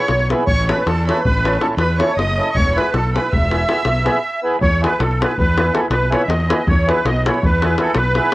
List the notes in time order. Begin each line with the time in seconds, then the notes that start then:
Already playing: C#5 C#6
0.08 B1, davul high
0.19 davul high
0.30 B3 E4 G#4 B4, davul high
0.46 A1 C#5 C#6, davul low
0.69 C#4 E4 A4 B4 C#5 B5, davul high
0.85 E2 A4 A5, davul high
0.98 davul high
1.07 C#4 E4 A4 B4 C#5 B5, davul high
1.17 davul high
1.25 A1 B4 B5, davul low
1.44 C#4 E4 A4 C#5, davul high
1.60 C#4 E4 A4 C#5 A5, davul high
1.77 E2 B4 B5, davul high
1.90 davul high
1.98 C#4 E4 A4 C#5 C#6, davul high
2.10 davul high
2.15 F#1 D#5 D#6, davul high
2.30 davul high
2.37 C#4 E4 A4 C#5
2.53 E1 C#5 C#6, davul low
2.67 davul high
2.75 B3 E4 G#4 B4 B5, davul high
2.92 B1 A4 A5, davul high
3.05 davul high
3.14 B3 E4 G#4 B4 B5, davul high
3.31 E1 E5 E6, davul low
3.42 davul high
3.51 B3 E4 G#4 B4, davul high
3.68 B3 E4 G#4 B4, davul high
3.76 davul high
3.85 B1, davul high
3.96 davul high
4.04 B3 E4 G#4 B4, davul high
4.16 davul high
4.43 B3 E4 G#4 B4
4.61 E2 C#5, davul low
4.81 B3 E4 G#4 B4, davul high
4.99 B1 A4, davul high
5.11 davul high
5.20 B3 E4 G#4 B4, davul high
5.31 davul high
5.38 E2 B4, davul low
5.57 B3 E4 G#4 B4, davul high
5.73 B3 E4 G#4 A4 B4, davul high
5.90 B1 B4, davul high
6.02 davul high
6.10 B3 E4 G#4 B4 C#5, davul high
6.21 E5, davul high
6.28 E2 D#5, davul high
6.40 davul high
6.48 B3 E4 G#4 B4, davul high
6.67 E2 C#5, davul low
6.87 B3 E4 G#4 B4, davul high
7.05 B1 D#5, davul high
7.16 davul high
7.26 B3 E4 G#4 B4 C#5, davul high
7.34 davul high
7.43 E2 B4, davul low
7.62 B3 E4 G#4 B4, davul high
7.78 B3 E4 G#4 A4 B4, davul high
7.94 B1 B4, davul high
8.05 davul high
8.15 B3 E4 G#4 B4, davul high
8.24 davul high